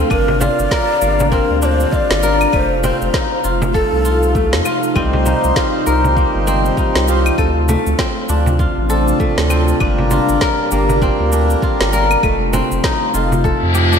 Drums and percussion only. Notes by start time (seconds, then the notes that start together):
0.11 kick, claves, shaker
0.28 frame drum
0.41 frame drum, shaker
0.59 shaker
0.71 kick, snare, shaker
1.02 shaker
1.20 frame drum, shaker
1.32 kick, shaker
1.62 shaker
1.80 shaker
1.93 kick, shaker
2.11 snare
2.23 shaker
2.41 claves, shaker
2.53 kick, claves, shaker
2.84 frame drum, shaker
3.02 shaker
3.14 kick, snare, shaker
3.44 shaker
3.62 frame drum, shaker
3.74 kick, shaker
4.05 shaker
4.23 shaker
4.35 kick, shaker
4.53 snare
4.65 claves, shaker
4.83 shaker
4.96 kick, claves, shaker
5.13 frame drum
5.26 frame drum, shaker
5.44 shaker
5.56 kick, snare, shaker
5.87 shaker
6.04 frame drum, shaker
6.17 kick, shaker
6.47 shaker
6.65 shaker
6.77 kick, shaker
6.96 snare
7.08 shaker
7.26 claves, shaker
7.38 kick, claves, shaker
7.69 frame drum, shaker
7.86 shaker
7.99 kick, snare, shaker
8.29 shaker
8.46 frame drum, shaker
8.59 kick, shaker
8.90 shaker
9.08 shaker
9.20 kick, shaker
9.38 snare
9.50 claves, shaker
9.68 shaker
9.80 kick, claves, shaker
9.98 frame drum
10.11 frame drum, shaker
10.29 shaker
10.41 kick, snare, shaker
10.71 shaker
10.89 frame drum, shaker
11.02 kick, shaker
11.32 shaker
11.50 shaker
11.62 kick, shaker
11.81 snare
11.93 shaker
12.11 claves, shaker
12.23 kick, claves, shaker
12.53 frame drum, shaker
12.71 shaker
12.84 kick, snare, shaker
13.14 shaker
13.32 frame drum, shaker
13.44 kick, shaker
13.75 shaker
13.93 shaker